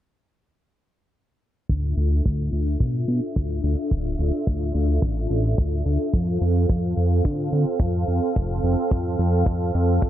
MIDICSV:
0, 0, Header, 1, 4, 480
1, 0, Start_track
1, 0, Key_signature, -1, "minor"
1, 0, Tempo, 555556
1, 1460, Time_signature, 4, 2, 24, 8
1, 8724, End_track
2, 0, Start_track
2, 0, Title_t, "Analog synth pad"
2, 0, Program_c, 0, 89
2, 1462, Note_on_c, 0, 62, 72
2, 1462, Note_on_c, 0, 69, 65
2, 1462, Note_on_c, 0, 76, 80
2, 1463, Note_on_c, 0, 65, 67
2, 5267, Note_off_c, 0, 62, 0
2, 5267, Note_off_c, 0, 65, 0
2, 5267, Note_off_c, 0, 76, 0
2, 5300, Note_on_c, 0, 60, 72
2, 5300, Note_on_c, 0, 65, 66
2, 5300, Note_on_c, 0, 77, 77
2, 8724, Note_off_c, 0, 60, 0
2, 8724, Note_off_c, 0, 65, 0
2, 8724, Note_off_c, 0, 69, 0
2, 8724, Note_off_c, 0, 77, 0
2, 8724, End_track
3, 0, Start_track
3, 0, Title_t, "Analog synth bass"
3, 0, Program_c, 1, 38
3, 1464, Note_on_c, 1, 38, 94
3, 1677, Note_off_c, 1, 38, 0
3, 1701, Note_on_c, 1, 38, 93
3, 1915, Note_off_c, 1, 38, 0
3, 1949, Note_on_c, 1, 38, 90
3, 2159, Note_off_c, 1, 38, 0
3, 2180, Note_on_c, 1, 38, 82
3, 2395, Note_off_c, 1, 38, 0
3, 2422, Note_on_c, 1, 47, 78
3, 2636, Note_off_c, 1, 47, 0
3, 2660, Note_on_c, 1, 47, 90
3, 2767, Note_off_c, 1, 47, 0
3, 2906, Note_on_c, 1, 38, 97
3, 3118, Note_off_c, 1, 38, 0
3, 3141, Note_on_c, 1, 38, 76
3, 3248, Note_off_c, 1, 38, 0
3, 3382, Note_on_c, 1, 26, 77
3, 3596, Note_off_c, 1, 26, 0
3, 3620, Note_on_c, 1, 26, 95
3, 3728, Note_off_c, 1, 26, 0
3, 3864, Note_on_c, 1, 38, 81
3, 4077, Note_off_c, 1, 38, 0
3, 4100, Note_on_c, 1, 38, 97
3, 4315, Note_off_c, 1, 38, 0
3, 4340, Note_on_c, 1, 33, 82
3, 4555, Note_off_c, 1, 33, 0
3, 4580, Note_on_c, 1, 33, 93
3, 4795, Note_off_c, 1, 33, 0
3, 4823, Note_on_c, 1, 38, 97
3, 5036, Note_off_c, 1, 38, 0
3, 5060, Note_on_c, 1, 38, 74
3, 5167, Note_off_c, 1, 38, 0
3, 5301, Note_on_c, 1, 41, 95
3, 5515, Note_off_c, 1, 41, 0
3, 5541, Note_on_c, 1, 41, 92
3, 5755, Note_off_c, 1, 41, 0
3, 5784, Note_on_c, 1, 41, 96
3, 5997, Note_off_c, 1, 41, 0
3, 6021, Note_on_c, 1, 41, 85
3, 6235, Note_off_c, 1, 41, 0
3, 6264, Note_on_c, 1, 50, 82
3, 6477, Note_off_c, 1, 50, 0
3, 6501, Note_on_c, 1, 50, 86
3, 6608, Note_off_c, 1, 50, 0
3, 6736, Note_on_c, 1, 41, 101
3, 6953, Note_off_c, 1, 41, 0
3, 6981, Note_on_c, 1, 41, 75
3, 7088, Note_off_c, 1, 41, 0
3, 7225, Note_on_c, 1, 29, 78
3, 7437, Note_off_c, 1, 29, 0
3, 7461, Note_on_c, 1, 29, 97
3, 7568, Note_off_c, 1, 29, 0
3, 7702, Note_on_c, 1, 41, 83
3, 7916, Note_off_c, 1, 41, 0
3, 7940, Note_on_c, 1, 41, 98
3, 8155, Note_off_c, 1, 41, 0
3, 8176, Note_on_c, 1, 41, 94
3, 8393, Note_off_c, 1, 41, 0
3, 8421, Note_on_c, 1, 41, 99
3, 8635, Note_off_c, 1, 41, 0
3, 8659, Note_on_c, 1, 41, 78
3, 8724, Note_off_c, 1, 41, 0
3, 8724, End_track
4, 0, Start_track
4, 0, Title_t, "Drums"
4, 1464, Note_on_c, 9, 36, 100
4, 1468, Note_on_c, 9, 42, 88
4, 1550, Note_off_c, 9, 36, 0
4, 1554, Note_off_c, 9, 42, 0
4, 1583, Note_on_c, 9, 42, 51
4, 1669, Note_off_c, 9, 42, 0
4, 1704, Note_on_c, 9, 42, 79
4, 1790, Note_off_c, 9, 42, 0
4, 1813, Note_on_c, 9, 42, 56
4, 1899, Note_off_c, 9, 42, 0
4, 1947, Note_on_c, 9, 42, 84
4, 1949, Note_on_c, 9, 36, 96
4, 2034, Note_off_c, 9, 42, 0
4, 2035, Note_off_c, 9, 36, 0
4, 2181, Note_on_c, 9, 42, 80
4, 2267, Note_off_c, 9, 42, 0
4, 2300, Note_on_c, 9, 42, 69
4, 2387, Note_off_c, 9, 42, 0
4, 2422, Note_on_c, 9, 36, 97
4, 2422, Note_on_c, 9, 42, 87
4, 2508, Note_off_c, 9, 42, 0
4, 2509, Note_off_c, 9, 36, 0
4, 2662, Note_on_c, 9, 42, 82
4, 2748, Note_off_c, 9, 42, 0
4, 2783, Note_on_c, 9, 42, 64
4, 2870, Note_off_c, 9, 42, 0
4, 2903, Note_on_c, 9, 42, 77
4, 2905, Note_on_c, 9, 36, 104
4, 2989, Note_off_c, 9, 42, 0
4, 2992, Note_off_c, 9, 36, 0
4, 3018, Note_on_c, 9, 42, 48
4, 3104, Note_off_c, 9, 42, 0
4, 3132, Note_on_c, 9, 42, 71
4, 3218, Note_off_c, 9, 42, 0
4, 3262, Note_on_c, 9, 42, 63
4, 3349, Note_off_c, 9, 42, 0
4, 3380, Note_on_c, 9, 42, 80
4, 3381, Note_on_c, 9, 36, 106
4, 3467, Note_off_c, 9, 42, 0
4, 3468, Note_off_c, 9, 36, 0
4, 3505, Note_on_c, 9, 42, 52
4, 3592, Note_off_c, 9, 42, 0
4, 3621, Note_on_c, 9, 42, 84
4, 3707, Note_off_c, 9, 42, 0
4, 3743, Note_on_c, 9, 42, 59
4, 3830, Note_off_c, 9, 42, 0
4, 3859, Note_on_c, 9, 42, 81
4, 3863, Note_on_c, 9, 36, 120
4, 3945, Note_off_c, 9, 42, 0
4, 3949, Note_off_c, 9, 36, 0
4, 4096, Note_on_c, 9, 42, 83
4, 4183, Note_off_c, 9, 42, 0
4, 4219, Note_on_c, 9, 42, 65
4, 4306, Note_off_c, 9, 42, 0
4, 4339, Note_on_c, 9, 36, 107
4, 4340, Note_on_c, 9, 42, 87
4, 4426, Note_off_c, 9, 36, 0
4, 4426, Note_off_c, 9, 42, 0
4, 4585, Note_on_c, 9, 42, 80
4, 4671, Note_off_c, 9, 42, 0
4, 4705, Note_on_c, 9, 42, 64
4, 4791, Note_off_c, 9, 42, 0
4, 4819, Note_on_c, 9, 42, 88
4, 4823, Note_on_c, 9, 36, 115
4, 4905, Note_off_c, 9, 42, 0
4, 4909, Note_off_c, 9, 36, 0
4, 4939, Note_on_c, 9, 42, 50
4, 5026, Note_off_c, 9, 42, 0
4, 5063, Note_on_c, 9, 42, 80
4, 5149, Note_off_c, 9, 42, 0
4, 5179, Note_on_c, 9, 42, 64
4, 5266, Note_off_c, 9, 42, 0
4, 5301, Note_on_c, 9, 36, 118
4, 5303, Note_on_c, 9, 42, 76
4, 5387, Note_off_c, 9, 36, 0
4, 5390, Note_off_c, 9, 42, 0
4, 5417, Note_on_c, 9, 42, 48
4, 5504, Note_off_c, 9, 42, 0
4, 5546, Note_on_c, 9, 42, 83
4, 5632, Note_off_c, 9, 42, 0
4, 5666, Note_on_c, 9, 42, 65
4, 5752, Note_off_c, 9, 42, 0
4, 5782, Note_on_c, 9, 42, 82
4, 5784, Note_on_c, 9, 36, 113
4, 5869, Note_off_c, 9, 42, 0
4, 5871, Note_off_c, 9, 36, 0
4, 6020, Note_on_c, 9, 42, 83
4, 6106, Note_off_c, 9, 42, 0
4, 6139, Note_on_c, 9, 42, 58
4, 6225, Note_off_c, 9, 42, 0
4, 6258, Note_on_c, 9, 42, 80
4, 6263, Note_on_c, 9, 36, 120
4, 6344, Note_off_c, 9, 42, 0
4, 6350, Note_off_c, 9, 36, 0
4, 6503, Note_on_c, 9, 42, 81
4, 6590, Note_off_c, 9, 42, 0
4, 6617, Note_on_c, 9, 42, 60
4, 6703, Note_off_c, 9, 42, 0
4, 6734, Note_on_c, 9, 42, 81
4, 6736, Note_on_c, 9, 36, 125
4, 6820, Note_off_c, 9, 42, 0
4, 6823, Note_off_c, 9, 36, 0
4, 6865, Note_on_c, 9, 42, 52
4, 6951, Note_off_c, 9, 42, 0
4, 6978, Note_on_c, 9, 42, 82
4, 7065, Note_off_c, 9, 42, 0
4, 7097, Note_on_c, 9, 42, 61
4, 7183, Note_off_c, 9, 42, 0
4, 7225, Note_on_c, 9, 36, 110
4, 7226, Note_on_c, 9, 42, 78
4, 7312, Note_off_c, 9, 36, 0
4, 7312, Note_off_c, 9, 42, 0
4, 7343, Note_on_c, 9, 42, 50
4, 7429, Note_off_c, 9, 42, 0
4, 7463, Note_on_c, 9, 42, 79
4, 7550, Note_off_c, 9, 42, 0
4, 7586, Note_on_c, 9, 42, 59
4, 7673, Note_off_c, 9, 42, 0
4, 7702, Note_on_c, 9, 36, 110
4, 7702, Note_on_c, 9, 42, 84
4, 7788, Note_off_c, 9, 36, 0
4, 7788, Note_off_c, 9, 42, 0
4, 7944, Note_on_c, 9, 42, 70
4, 8030, Note_off_c, 9, 42, 0
4, 8058, Note_on_c, 9, 42, 65
4, 8145, Note_off_c, 9, 42, 0
4, 8176, Note_on_c, 9, 36, 123
4, 8181, Note_on_c, 9, 42, 74
4, 8262, Note_off_c, 9, 36, 0
4, 8267, Note_off_c, 9, 42, 0
4, 8419, Note_on_c, 9, 42, 73
4, 8506, Note_off_c, 9, 42, 0
4, 8542, Note_on_c, 9, 42, 66
4, 8629, Note_off_c, 9, 42, 0
4, 8659, Note_on_c, 9, 36, 110
4, 8669, Note_on_c, 9, 42, 75
4, 8724, Note_off_c, 9, 36, 0
4, 8724, Note_off_c, 9, 42, 0
4, 8724, End_track
0, 0, End_of_file